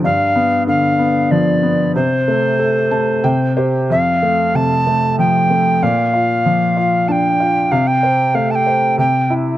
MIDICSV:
0, 0, Header, 1, 3, 480
1, 0, Start_track
1, 0, Key_signature, -1, "major"
1, 0, Tempo, 636267
1, 29, Time_signature, 3, 2, 24, 8
1, 1950, Tempo, 649351
1, 3870, Tempo, 634249
1, 7196, End_track
2, 0, Start_track
2, 0, Title_t, "Recorder"
2, 0, Program_c, 0, 74
2, 34, Note_on_c, 0, 77, 79
2, 477, Note_off_c, 0, 77, 0
2, 514, Note_on_c, 0, 77, 69
2, 989, Note_on_c, 0, 74, 66
2, 1001, Note_off_c, 0, 77, 0
2, 1468, Note_off_c, 0, 74, 0
2, 1473, Note_on_c, 0, 72, 74
2, 2648, Note_off_c, 0, 72, 0
2, 2933, Note_on_c, 0, 77, 75
2, 3407, Note_on_c, 0, 81, 83
2, 3418, Note_off_c, 0, 77, 0
2, 3871, Note_off_c, 0, 81, 0
2, 3876, Note_on_c, 0, 79, 80
2, 4359, Note_on_c, 0, 77, 76
2, 4370, Note_off_c, 0, 79, 0
2, 5308, Note_on_c, 0, 81, 66
2, 5319, Note_off_c, 0, 77, 0
2, 5334, Note_on_c, 0, 79, 71
2, 5342, Note_off_c, 0, 81, 0
2, 5787, Note_on_c, 0, 77, 70
2, 5799, Note_off_c, 0, 79, 0
2, 5905, Note_on_c, 0, 79, 78
2, 5916, Note_off_c, 0, 77, 0
2, 6267, Note_on_c, 0, 77, 72
2, 6278, Note_off_c, 0, 79, 0
2, 6387, Note_on_c, 0, 81, 81
2, 6398, Note_off_c, 0, 77, 0
2, 6420, Note_on_c, 0, 79, 88
2, 6428, Note_off_c, 0, 81, 0
2, 6748, Note_off_c, 0, 79, 0
2, 6751, Note_on_c, 0, 79, 73
2, 7011, Note_off_c, 0, 79, 0
2, 7196, End_track
3, 0, Start_track
3, 0, Title_t, "Felt piano"
3, 0, Program_c, 1, 0
3, 0, Control_c, 1, 64, 127
3, 32, Note_on_c, 1, 43, 53
3, 40, Control_c, 1, 64, 0
3, 172, Control_c, 1, 64, 127
3, 268, Note_on_c, 1, 59, 46
3, 506, Note_on_c, 1, 50, 45
3, 737, Note_off_c, 1, 59, 0
3, 748, Note_on_c, 1, 59, 39
3, 991, Note_on_c, 1, 53, 52
3, 1219, Note_off_c, 1, 59, 0
3, 1230, Note_on_c, 1, 59, 44
3, 1437, Note_off_c, 1, 43, 0
3, 1438, Note_off_c, 1, 50, 0
3, 1455, Note_off_c, 1, 53, 0
3, 1461, Note_off_c, 1, 59, 0
3, 1475, Control_c, 1, 64, 0
3, 1476, Note_on_c, 1, 48, 54
3, 1627, Control_c, 1, 64, 127
3, 1719, Note_on_c, 1, 57, 44
3, 1956, Note_on_c, 1, 69, 44
3, 2181, Note_off_c, 1, 57, 0
3, 2191, Note_on_c, 1, 81, 50
3, 2192, Note_on_c, 1, 57, 43
3, 2407, Note_off_c, 1, 48, 0
3, 2415, Note_off_c, 1, 81, 0
3, 2420, Note_off_c, 1, 69, 0
3, 2426, Note_off_c, 1, 57, 0
3, 2431, Note_on_c, 1, 48, 60
3, 2433, Note_on_c, 1, 79, 59
3, 2440, Control_c, 1, 64, 0
3, 2571, Control_c, 1, 64, 127
3, 2658, Note_off_c, 1, 79, 0
3, 2676, Note_on_c, 1, 72, 54
3, 2679, Note_on_c, 1, 67, 45
3, 2900, Note_off_c, 1, 72, 0
3, 2902, Note_off_c, 1, 48, 0
3, 2911, Note_off_c, 1, 67, 0
3, 2921, Note_on_c, 1, 41, 52
3, 2927, Control_c, 1, 64, 0
3, 3071, Control_c, 1, 64, 127
3, 3163, Note_on_c, 1, 57, 45
3, 3397, Note_on_c, 1, 48, 41
3, 3626, Note_off_c, 1, 57, 0
3, 3638, Note_on_c, 1, 57, 43
3, 3873, Note_on_c, 1, 53, 46
3, 4102, Note_off_c, 1, 57, 0
3, 4113, Note_on_c, 1, 57, 45
3, 4322, Note_off_c, 1, 48, 0
3, 4323, Note_off_c, 1, 41, 0
3, 4338, Note_off_c, 1, 53, 0
3, 4345, Note_off_c, 1, 57, 0
3, 4357, Note_on_c, 1, 46, 56
3, 4362, Control_c, 1, 64, 0
3, 4499, Control_c, 1, 64, 127
3, 4590, Note_on_c, 1, 65, 48
3, 4834, Note_on_c, 1, 53, 43
3, 5059, Note_off_c, 1, 65, 0
3, 5070, Note_on_c, 1, 65, 44
3, 5312, Note_on_c, 1, 62, 48
3, 5537, Note_off_c, 1, 65, 0
3, 5549, Note_on_c, 1, 65, 46
3, 5755, Note_off_c, 1, 46, 0
3, 5756, Note_off_c, 1, 53, 0
3, 5771, Note_off_c, 1, 62, 0
3, 5778, Note_off_c, 1, 65, 0
3, 5787, Note_on_c, 1, 48, 62
3, 5793, Control_c, 1, 64, 0
3, 5933, Control_c, 1, 64, 127
3, 6026, Note_on_c, 1, 72, 45
3, 6263, Note_on_c, 1, 57, 45
3, 6494, Note_off_c, 1, 72, 0
3, 6505, Note_on_c, 1, 72, 41
3, 6720, Note_off_c, 1, 48, 0
3, 6732, Note_off_c, 1, 57, 0
3, 6740, Note_off_c, 1, 72, 0
3, 6743, Note_on_c, 1, 48, 53
3, 6757, Control_c, 1, 64, 0
3, 6889, Control_c, 1, 64, 127
3, 6988, Note_on_c, 1, 64, 47
3, 7196, Note_off_c, 1, 48, 0
3, 7196, Note_off_c, 1, 64, 0
3, 7196, End_track
0, 0, End_of_file